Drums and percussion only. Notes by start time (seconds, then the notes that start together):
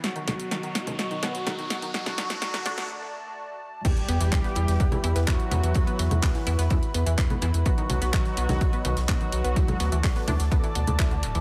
0.04 snare, closed hi-hat
0.16 closed hi-hat
0.28 snare, open hi-hat, low conga
0.40 closed hi-hat
0.51 snare, closed hi-hat
0.63 closed hi-hat
0.75 snare, open hi-hat
0.87 closed hi-hat, low conga
0.99 snare, closed hi-hat
1.11 closed hi-hat
1.23 snare, open hi-hat
1.35 closed hi-hat
1.47 snare, closed hi-hat, low conga
1.59 closed hi-hat
1.70 snare, open hi-hat
1.82 open hi-hat
1.94 snare, closed hi-hat
2.06 snare, closed hi-hat, low conga
2.18 snare, open hi-hat
2.30 snare, closed hi-hat
2.42 snare, closed hi-hat
2.54 snare, closed hi-hat
2.66 snare, open hi-hat, low conga
2.78 snare, closed hi-hat
3.85 kick, closed hi-hat, crash, ride
3.97 closed hi-hat
4.09 open hi-hat, ride
4.21 snare, closed hi-hat
4.32 kick, snare, clap, closed hi-hat, ride, low conga
4.44 snare, closed hi-hat
4.55 open hi-hat, ride
4.68 snare, closed hi-hat
4.80 kick, closed hi-hat, ride
4.92 closed hi-hat, low conga
5.04 open hi-hat, ride
5.15 snare, closed hi-hat
5.27 kick, snare, clap, closed hi-hat, ride
5.40 closed hi-hat
5.51 open hi-hat, ride, low conga
5.64 closed hi-hat
5.74 kick, closed hi-hat, ride
5.87 closed hi-hat, ride
5.99 snare, open hi-hat, ride
6.11 closed hi-hat, low conga
6.22 kick, snare, clap, closed hi-hat, open hi-hat
6.35 snare, closed hi-hat
6.47 open hi-hat, ride
6.59 snare, closed hi-hat
6.70 kick, closed hi-hat, ride, low conga
6.83 closed hi-hat
6.94 open hi-hat, ride
7.07 closed hi-hat
7.18 kick, snare, clap, closed hi-hat, ride
7.30 closed hi-hat, low conga
7.42 open hi-hat, ride
7.54 closed hi-hat
7.65 kick, closed hi-hat, ride
7.78 closed hi-hat
7.89 open hi-hat, ride, low conga
8.01 snare, closed hi-hat
8.13 kick, snare, clap, closed hi-hat, ride
8.25 snare, closed hi-hat
8.37 open hi-hat, ride
8.49 snare, closed hi-hat, low conga
8.61 kick, closed hi-hat, ride
8.73 closed hi-hat
8.85 open hi-hat, ride
8.97 snare, closed hi-hat
9.08 kick, snare, clap, closed hi-hat, ride, low conga
9.21 closed hi-hat
9.32 open hi-hat, ride
9.45 closed hi-hat
9.56 kick, closed hi-hat, ride
9.68 closed hi-hat, ride, low conga
9.80 snare, open hi-hat, ride
9.92 closed hi-hat
10.04 kick, snare, clap, closed hi-hat, open hi-hat
10.16 snare, closed hi-hat
10.28 open hi-hat, ride, low conga
10.40 snare, closed hi-hat
10.52 kick, closed hi-hat, ride
10.64 closed hi-hat
10.75 open hi-hat, ride
10.87 closed hi-hat, low conga
10.99 kick, snare, clap, closed hi-hat, ride
11.11 closed hi-hat
11.23 open hi-hat, ride
11.35 open hi-hat